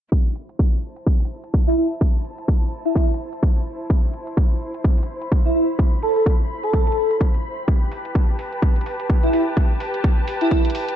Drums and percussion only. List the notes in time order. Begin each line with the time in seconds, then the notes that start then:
0.12 kick, closed hi-hat
0.36 closed hi-hat
0.49 closed hi-hat
0.59 kick, closed hi-hat
0.96 closed hi-hat
1.06 kick, closed hi-hat
1.20 closed hi-hat
1.25 closed hi-hat
1.44 closed hi-hat
1.54 kick, closed hi-hat
1.67 closed hi-hat
2.01 kick, closed hi-hat
2.25 closed hi-hat
2.38 closed hi-hat
2.48 kick, closed hi-hat
2.85 closed hi-hat
2.96 kick, closed hi-hat
3.09 closed hi-hat
3.14 closed hi-hat
3.33 closed hi-hat
3.43 kick, closed hi-hat
3.56 closed hi-hat
3.90 kick, closed hi-hat
4.14 closed hi-hat
4.27 closed hi-hat
4.37 kick, closed hi-hat
4.74 closed hi-hat
4.84 kick, closed hi-hat
4.98 closed hi-hat
5.03 closed hi-hat
5.22 closed hi-hat
5.32 kick, closed hi-hat
5.45 closed hi-hat
5.79 kick, closed hi-hat
6.03 closed hi-hat
6.16 closed hi-hat
6.26 kick, closed hi-hat
6.63 closed hi-hat
6.73 kick, closed hi-hat
6.87 closed hi-hat
6.92 closed hi-hat
7.11 closed hi-hat
7.21 kick, closed hi-hat
7.34 closed hi-hat
7.68 kick, closed hi-hat
7.92 open hi-hat
8.05 closed hi-hat
8.15 kick, closed hi-hat
8.39 open hi-hat
8.52 closed hi-hat
8.62 kick, closed hi-hat
8.76 closed hi-hat
8.81 closed hi-hat
8.86 open hi-hat
9.00 closed hi-hat
9.10 kick, closed hi-hat
9.23 closed hi-hat
9.33 open hi-hat
9.57 kick, closed hi-hat
9.80 open hi-hat
9.94 closed hi-hat
10.04 kick, closed hi-hat
10.28 open hi-hat
10.41 closed hi-hat
10.51 kick, closed hi-hat
10.65 closed hi-hat
10.70 closed hi-hat
10.75 open hi-hat
10.88 closed hi-hat